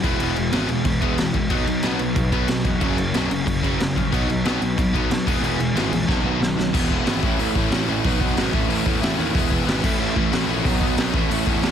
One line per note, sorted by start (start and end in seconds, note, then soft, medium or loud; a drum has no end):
0.03 0.18 E1 medium
0.03 0.19 E2 medium
0.03 0.19 B2 loud
0.03 0.19 E3 medium
0.03 0.19 G#3 loud
0.03 0.20 B3 loud
0.03 1.19 E4 medium
0.03 kick loud
0.03 crash medium
0.20 0.48 E1 medium
0.20 0.35 E2 medium
0.20 0.34 B2 medium
0.20 0.36 E3 medium
0.20 0.36 G#3 medium
0.20 0.36 B3 loud
0.20 crash medium
0.36 0.51 E2 medium
0.36 0.51 B2 medium
0.36 0.51 E3 medium
0.36 0.52 G#3 medium
0.36 crash medium
0.52 0.67 G#1 loud
0.52 0.68 E2 medium
0.52 0.68 B2 loud
0.52 0.68 E3 loud
0.52 0.69 G#3 loud
0.52 0.68 B3 loud
0.52 snare loud
0.52 crash medium
0.68 0.83 E1 medium
0.68 0.84 E2 medium
0.68 0.84 B2 medium
0.68 0.83 E3 medium
0.68 0.84 G#3 medium
0.68 crash medium
0.84 0.99 E1 medium
0.84 1.00 E2 medium
0.84 1.00 B2 medium
0.84 1.00 E3 medium
0.84 1.00 G#3 medium
0.84 kick loud
0.84 crash medium
1.01 1.16 E1 medium
1.01 1.17 E2 loud
1.01 1.17 B2 loud
1.01 1.17 E3 medium
1.01 1.17 G#3 loud
1.01 1.18 B3 loud
1.01 kick loud
1.01 crash medium
1.17 1.32 E1 medium
1.17 1.33 E2 medium
1.17 1.33 B2 medium
1.17 1.33 E3 medium
1.17 1.33 G#3 medium
1.17 1.35 B3 medium
1.17 snare loud
1.17 crash medium
1.22 1.35 E4 medium
1.34 1.48 E1 medium
1.34 1.50 E2 medium
1.34 1.50 B2 medium
1.34 1.49 E3 medium
1.34 1.49 G#3 medium
1.34 kick medium
1.34 crash medium
1.50 1.65 B1 medium
1.50 1.65 B2 medium
1.50 1.66 F#3 loud
1.50 1.66 B3 loud
1.50 kick loud
1.50 crash medium
1.54 2.63 D#4 loud
1.66 1.81 B1 medium
1.66 1.81 B2 medium
1.66 1.82 F#3 medium
1.66 crash medium
1.83 1.98 B1 loud
1.83 1.98 B2 loud
1.83 1.99 F#3 loud
1.83 1.99 B3 loud
1.83 snare loud
1.83 crash medium
1.99 2.14 B1 medium
1.99 2.14 B2 medium
1.99 2.15 F#3 loud
1.99 crash medium
2.15 2.30 B1 loud
2.15 2.31 B2 medium
2.15 2.31 F#3 medium
2.15 kick loud
2.15 crash medium
2.32 2.46 B1 medium
2.32 2.46 B2 medium
2.32 2.47 F#3 loud
2.32 2.48 B3 loud
2.32 kick medium
2.32 crash medium
2.48 2.63 B1 medium
2.48 2.63 B2 medium
2.48 2.63 F#3 medium
2.48 snare loud
2.48 crash medium
2.64 2.79 E1 medium
2.64 2.80 B2 medium
2.64 2.80 F#3 medium
2.64 2.81 B3 medium
2.64 2.80 D#4 medium
2.64 kick medium
2.64 crash medium
2.69 2.81 B2 medium
2.80 3.09 F#1 loud
2.80 2.96 F#2 medium
2.80 2.97 C#3 loud
2.80 2.97 F#3 loud
2.80 3.94 A#3 medium
2.80 kick loud
2.80 crash medium
2.85 3.93 C#4 loud
2.98 3.13 F#2 medium
2.98 3.13 C#3 medium
2.98 crash medium
3.14 3.29 B1 loud
3.14 3.29 F#2 loud
3.14 3.30 C#3 loud
3.14 3.30 F#3 loud
3.14 snare loud
3.14 crash medium
3.31 3.45 F#1 medium
3.31 3.45 F#2 medium
3.31 3.45 C#3 medium
3.31 crash medium
3.46 3.61 F#1 loud
3.46 3.61 F#2 medium
3.46 3.62 C#3 medium
3.46 kick loud
3.46 crash medium
3.62 3.77 F#1 medium
3.62 3.78 F#2 loud
3.62 3.78 C#3 loud
3.62 3.78 F#3 loud
3.62 kick medium
3.62 crash medium
3.80 3.94 F#1 loud
3.80 3.95 F#2 medium
3.80 3.95 C#3 medium
3.80 snare loud
3.80 crash medium
3.94 4.10 A#1 medium
3.94 4.11 F#2 medium
3.94 4.11 C#3 medium
3.94 4.12 F#3 medium
3.94 4.11 A#3 medium
3.94 4.11 C#4 medium
3.94 kick medium
3.94 crash medium
4.12 4.26 B1 medium
4.12 4.28 B2 loud
4.12 4.28 F#3 loud
4.12 4.28 B3 loud
4.12 5.27 D#4 loud
4.12 kick loud
4.12 crash medium
4.28 4.43 B1 medium
4.28 4.44 B2 medium
4.28 4.44 F#3 medium
4.28 crash medium
4.45 4.59 B1 loud
4.45 4.60 B2 loud
4.45 4.60 F#3 loud
4.45 4.61 B3 loud
4.45 snare loud
4.45 crash medium
4.61 4.75 B1 medium
4.61 4.76 B2 medium
4.61 4.76 F#3 medium
4.61 crash medium
4.77 4.92 B1 medium
4.77 4.92 B2 medium
4.77 4.92 F#3 loud
4.77 kick loud
4.77 crash medium
4.93 5.08 B1 medium
4.93 5.09 B2 loud
4.93 5.09 F#3 loud
4.93 5.10 B3 loud
4.93 kick loud
4.93 crash medium
5.10 5.24 B1 loud
5.10 5.25 B2 medium
5.10 5.25 F#3 medium
5.10 snare loud
5.10 crash medium
5.27 5.41 E1 loud
5.27 5.42 E2 medium
5.27 5.42 B2 loud
5.27 5.42 E3 medium
5.27 5.42 G#3 loud
5.27 5.42 B3 loud
5.27 6.08 E4 loud
5.27 6.09 G#4 loud
5.27 kick loud
5.27 crash loud
5.41 5.70 E1 loud
5.41 5.58 E2 medium
5.41 5.58 B2 medium
5.41 5.58 E3 loud
5.41 5.59 G#3 loud
5.41 5.59 B3 loud
5.41 crash medium
5.59 5.74 E2 medium
5.59 5.74 B2 medium
5.59 5.74 E3 medium
5.59 5.74 G#3 medium
5.59 crash medium
5.74 5.89 G#1 loud
5.74 5.91 E2 loud
5.74 5.91 B2 loud
5.74 5.91 E3 loud
5.74 5.91 G#3 loud
5.74 5.91 B3 loud
5.74 snare loud
5.74 crash medium
5.91 6.06 A#1 loud
5.91 6.07 E2 medium
5.91 6.07 B2 medium
5.91 6.07 E3 medium
5.91 6.07 G#3 loud
5.91 crash medium
6.08 6.23 B1 medium
6.08 6.23 B2 loud
6.08 6.23 D#3 loud
6.08 6.24 F#3 loud
6.08 6.24 B3 loud
6.08 6.74 B3 loud
6.08 6.74 D#4 loud
6.08 6.74 A4 loud
6.08 kick loud
6.08 snare medium
6.24 6.38 B1 medium
6.24 6.40 B2 loud
6.24 6.40 D#3 loud
6.24 6.40 F#3 loud
6.24 6.41 B3 loud
6.41 6.55 B1 loud
6.41 6.56 B2 medium
6.41 6.56 D#3 medium
6.41 6.56 F#3 medium
6.41 snare loud
6.56 6.71 B1 loud
6.56 6.72 B2 medium
6.56 6.72 D#3 medium
6.56 6.73 F#3 medium
6.56 snare loud
6.73 6.86 E1 loud
6.73 6.90 E2 medium
6.73 6.90 B2 medium
6.73 6.90 E3 loud
6.73 6.90 G#3 loud
6.73 6.90 B3 loud
6.73 6.89 E4 loud
6.73 kick loud
6.73 crash loud
6.90 7.02 E1 medium
6.90 7.06 E2 medium
6.90 7.07 B2 medium
6.90 7.05 E3 medium
6.90 7.06 G#3 loud
6.90 7.06 B3 medium
6.90 7.06 E4 medium
6.90 kick medium
7.06 7.19 G#1 loud
7.06 7.22 E2 medium
7.06 7.23 B2 medium
7.06 7.21 E3 medium
7.06 7.22 G#3 loud
7.06 7.22 B3 loud
7.06 7.22 E4 loud
7.06 snare loud
7.06 open hi-hat medium
7.23 7.35 A1 loud
7.23 7.40 A2 loud
7.23 7.40 E3 loud
7.23 7.40 A3 loud
7.23 7.39 C#4 loud
7.23 7.39 E4 loud
7.23 kick loud
7.39 7.51 A1 medium
7.39 7.54 A2 medium
7.39 7.55 E3 loud
7.39 7.55 A3 loud
7.39 7.56 C#4 loud
7.39 7.57 E4 loud
7.39 open hi-hat medium
7.55 7.68 A1 medium
7.55 7.72 A2 medium
7.55 7.72 E3 loud
7.55 7.72 A3 loud
7.55 7.71 C#4 loud
7.55 7.71 E4 loud
7.55 kick loud
7.71 7.83 A1 medium
7.71 7.87 A2 medium
7.71 7.87 E3 medium
7.71 7.87 A3 medium
7.71 7.88 C#4 medium
7.71 7.88 E4 medium
7.71 snare loud
7.71 open hi-hat medium
7.87 7.99 A1 loud
7.87 8.03 A2 medium
7.87 8.04 E3 medium
7.87 8.04 A3 medium
7.87 8.04 C#4 medium
7.87 8.04 E4 loud
8.04 8.17 B1 loud
8.04 8.20 B2 loud
8.04 8.20 D#3 loud
8.04 8.19 F#3 loud
8.04 8.19 B3 loud
8.04 8.18 D#4 loud
8.04 kick loud
8.04 open hi-hat medium
8.20 8.33 B1 loud
8.20 8.35 B2 medium
8.20 8.35 D#3 medium
8.20 8.36 F#3 loud
8.20 8.36 B3 medium
8.20 8.36 D#4 loud
8.20 kick medium
8.36 8.49 G#1 loud
8.36 8.52 B2 loud
8.36 8.52 D#3 loud
8.36 8.52 F#3 loud
8.36 8.52 B3 loud
8.36 8.53 D#4 loud
8.36 snare loud
8.36 open hi-hat medium
8.52 8.65 A1 medium
8.52 8.69 A2 loud
8.52 8.69 E3 loud
8.52 8.68 A3 loud
8.52 8.68 C#4 loud
8.52 8.67 E4 loud
8.52 kick loud
8.69 8.82 A1 medium
8.69 8.84 A2 medium
8.69 8.84 E3 loud
8.69 8.85 A3 loud
8.69 8.85 C#4 loud
8.69 8.85 E4 loud
8.69 open hi-hat medium
8.86 8.98 E2 medium
8.86 9.02 A2 medium
8.86 9.01 E3 loud
8.86 9.01 A3 loud
8.86 9.01 C#4 loud
8.86 9.00 E4 loud
8.86 kick loud
9.02 9.14 E2 loud
9.02 9.16 A2 medium
9.02 9.17 E3 medium
9.02 9.17 A3 medium
9.02 9.17 C#4 medium
9.02 9.17 E4 loud
9.02 snare loud
9.02 open hi-hat medium
9.17 9.31 D#2 medium
9.17 9.33 A2 loud
9.17 9.32 E3 loud
9.17 9.34 A3 loud
9.17 9.34 C#4 medium
9.17 9.33 E4 loud
9.34 9.47 E1 loud
9.34 9.52 E2 medium
9.34 9.52 B2 loud
9.34 9.50 E3 loud
9.34 9.50 G#3 loud
9.34 9.50 B3 loud
9.34 9.50 E4 loud
9.34 kick loud
9.34 open hi-hat medium
9.51 9.63 E1 medium
9.51 9.68 E2 medium
9.51 9.68 B2 medium
9.51 9.65 E3 medium
9.51 9.65 G#3 medium
9.51 9.65 B3 medium
9.51 9.66 E4 loud
9.51 kick medium
9.66 9.79 G#1 loud
9.66 9.83 E2 medium
9.66 9.83 B2 loud
9.66 9.81 E3 loud
9.66 9.82 G#3 loud
9.66 9.82 B3 loud
9.66 9.82 E4 loud
9.66 snare loud
9.66 open hi-hat medium
9.82 9.96 A1 medium
9.82 10.00 A2 loud
9.82 10.00 E3 loud
9.82 9.99 A3 loud
9.82 9.99 C#4 loud
9.82 9.98 E4 loud
9.82 kick loud
9.82 crash loud
10.00 10.12 A1 loud
10.00 10.14 A2 medium
10.00 10.14 E3 loud
10.00 10.15 A3 loud
10.00 10.15 C#4 loud
10.00 10.15 E4 loud
10.15 10.28 A1 medium
10.15 10.32 A2 medium
10.15 10.31 E3 loud
10.15 10.31 A3 loud
10.15 10.31 C#4 loud
10.15 10.31 E4 loud
10.15 kick loud
10.32 10.45 A1 loud
10.32 10.47 A2 medium
10.32 10.47 E3 medium
10.32 10.47 A3 medium
10.32 10.48 C#4 medium
10.32 10.48 E4 medium
10.32 snare loud
10.32 open hi-hat medium
10.47 10.60 A#1 medium
10.47 10.63 A2 loud
10.47 10.63 E3 loud
10.47 10.63 A3 loud
10.47 10.64 C#4 medium
10.47 10.64 E4 loud
10.63 10.77 B1 medium
10.63 10.79 B2 loud
10.63 10.79 D#3 loud
10.63 10.79 F#3 loud
10.63 10.79 B3 loud
10.63 10.78 D#4 loud
10.63 kick loud
10.63 open hi-hat medium
10.69 11.15 D#4 loud
10.79 10.93 B1 medium
10.79 10.95 B2 medium
10.79 10.96 D#3 medium
10.79 10.96 F#3 loud
10.79 10.97 B3 medium
10.79 10.97 D#4 medium
10.79 kick loud
10.96 11.10 B1 loud
10.96 11.12 B2 loud
10.96 11.12 D#3 loud
10.96 11.13 F#3 loud
10.96 11.13 B3 loud
10.96 11.13 D#4 loud
10.96 snare loud
10.96 open hi-hat medium
11.12 11.26 A1 medium
11.12 11.29 A2 loud
11.12 11.29 E3 loud
11.12 11.28 A3 loud
11.12 11.28 C#4 loud
11.12 11.28 E4 loud
11.12 kick loud
11.18 11.71 E4 loud
11.29 11.42 A1 loud
11.29 11.43 A2 loud
11.29 11.45 E3 loud
11.29 11.45 A3 loud
11.29 11.45 C#4 loud
11.29 11.45 E4 loud
11.29 open hi-hat medium
11.45 11.58 E2 medium
11.45 11.62 A2 medium
11.45 11.62 E3 medium
11.45 11.61 A3 loud
11.45 11.61 C#4 loud
11.45 11.61 E4 loud
11.45 kick medium
11.62 11.71 E2 loud
11.62 11.71 A2 medium
11.62 11.71 E3 medium
11.62 11.71 A3 medium
11.62 11.71 C#4 medium
11.62 11.71 E4 medium
11.62 snare loud
11.62 open hi-hat medium